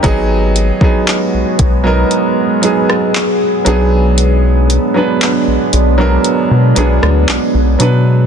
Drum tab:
HH |x-x-x-x-x-x-x-x-|x-x-x-x-x-x-x-x-|
CP |----x-------x---|----x-------x---|
SD |-----------r----|-----------r----|
BD |o--o--o---------|----------------|